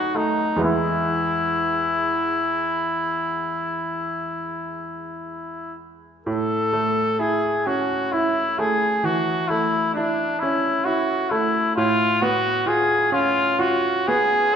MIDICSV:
0, 0, Header, 1, 3, 480
1, 0, Start_track
1, 0, Key_signature, 3, "major"
1, 0, Tempo, 940439
1, 317, Time_signature, 12, 3, 24, 8
1, 3679, Tempo, 920245
1, 5119, Tempo, 899550
1, 6559, Tempo, 946372
1, 7518, End_track
2, 0, Start_track
2, 0, Title_t, "Trumpet"
2, 0, Program_c, 0, 56
2, 0, Note_on_c, 0, 66, 50
2, 82, Note_on_c, 0, 63, 48
2, 90, Note_off_c, 0, 66, 0
2, 316, Note_off_c, 0, 63, 0
2, 319, Note_on_c, 0, 64, 53
2, 2941, Note_off_c, 0, 64, 0
2, 3194, Note_on_c, 0, 69, 59
2, 3673, Note_on_c, 0, 68, 56
2, 3680, Note_off_c, 0, 69, 0
2, 3917, Note_on_c, 0, 66, 54
2, 3925, Note_off_c, 0, 68, 0
2, 4156, Note_on_c, 0, 64, 55
2, 4164, Note_off_c, 0, 66, 0
2, 4401, Note_on_c, 0, 68, 58
2, 4409, Note_off_c, 0, 64, 0
2, 4639, Note_on_c, 0, 66, 49
2, 4647, Note_off_c, 0, 68, 0
2, 4866, Note_on_c, 0, 64, 57
2, 4874, Note_off_c, 0, 66, 0
2, 5100, Note_off_c, 0, 64, 0
2, 5103, Note_on_c, 0, 62, 54
2, 5346, Note_on_c, 0, 64, 61
2, 5354, Note_off_c, 0, 62, 0
2, 5587, Note_on_c, 0, 66, 61
2, 5595, Note_off_c, 0, 64, 0
2, 5831, Note_on_c, 0, 64, 56
2, 5839, Note_off_c, 0, 66, 0
2, 6072, Note_off_c, 0, 64, 0
2, 6075, Note_on_c, 0, 65, 58
2, 6320, Note_on_c, 0, 66, 66
2, 6328, Note_off_c, 0, 65, 0
2, 6563, Note_on_c, 0, 68, 64
2, 6571, Note_off_c, 0, 66, 0
2, 6788, Note_off_c, 0, 68, 0
2, 6793, Note_on_c, 0, 65, 66
2, 7030, Note_on_c, 0, 66, 68
2, 7038, Note_off_c, 0, 65, 0
2, 7274, Note_on_c, 0, 68, 68
2, 7281, Note_off_c, 0, 66, 0
2, 7518, Note_off_c, 0, 68, 0
2, 7518, End_track
3, 0, Start_track
3, 0, Title_t, "Grand piano"
3, 0, Program_c, 1, 0
3, 0, Control_c, 1, 64, 127
3, 0, Note_on_c, 1, 42, 40
3, 0, Note_on_c, 1, 57, 30
3, 0, Note_on_c, 1, 59, 34
3, 0, Note_on_c, 1, 63, 30
3, 75, Note_off_c, 1, 57, 0
3, 75, Note_on_c, 1, 57, 31
3, 222, Note_off_c, 1, 63, 0
3, 286, Note_on_c, 1, 40, 37
3, 294, Note_off_c, 1, 42, 0
3, 294, Note_on_c, 1, 56, 29
3, 301, Note_off_c, 1, 59, 0
3, 301, Note_on_c, 1, 59, 25
3, 304, Note_on_c, 1, 64, 28
3, 316, Note_off_c, 1, 57, 0
3, 327, Control_c, 1, 64, 0
3, 418, Control_c, 1, 64, 127
3, 3165, Note_off_c, 1, 40, 0
3, 3169, Note_off_c, 1, 56, 0
3, 3172, Note_off_c, 1, 59, 0
3, 3174, Note_off_c, 1, 64, 0
3, 3197, Note_on_c, 1, 45, 41
3, 3210, Control_c, 1, 64, 0
3, 3306, Control_c, 1, 64, 127
3, 3434, Note_on_c, 1, 57, 34
3, 3671, Note_on_c, 1, 64, 31
3, 3820, Note_off_c, 1, 57, 0
3, 3918, Note_on_c, 1, 61, 31
3, 4061, Note_off_c, 1, 64, 0
3, 4157, Note_on_c, 1, 64, 37
3, 4303, Note_off_c, 1, 61, 0
3, 4398, Note_on_c, 1, 57, 33
3, 4540, Note_off_c, 1, 64, 0
3, 4614, Note_off_c, 1, 45, 0
3, 4631, Note_on_c, 1, 52, 34
3, 4780, Note_off_c, 1, 57, 0
3, 4876, Note_on_c, 1, 57, 30
3, 5017, Note_off_c, 1, 52, 0
3, 5119, Note_on_c, 1, 64, 35
3, 5259, Note_off_c, 1, 57, 0
3, 5363, Note_on_c, 1, 61, 36
3, 5500, Note_off_c, 1, 64, 0
3, 5594, Note_on_c, 1, 64, 35
3, 5741, Note_off_c, 1, 61, 0
3, 5835, Note_on_c, 1, 57, 36
3, 5979, Note_off_c, 1, 64, 0
3, 6076, Note_off_c, 1, 57, 0
3, 6081, Note_on_c, 1, 45, 50
3, 6085, Control_c, 1, 64, 0
3, 6172, Control_c, 1, 64, 127
3, 6321, Note_on_c, 1, 59, 41
3, 6555, Note_on_c, 1, 65, 35
3, 6694, Note_off_c, 1, 59, 0
3, 6789, Note_on_c, 1, 61, 42
3, 6926, Note_off_c, 1, 65, 0
3, 7027, Note_on_c, 1, 65, 42
3, 7174, Note_off_c, 1, 61, 0
3, 7277, Note_on_c, 1, 59, 40
3, 7422, Note_off_c, 1, 65, 0
3, 7498, Note_off_c, 1, 45, 0
3, 7518, Note_off_c, 1, 59, 0
3, 7518, End_track
0, 0, End_of_file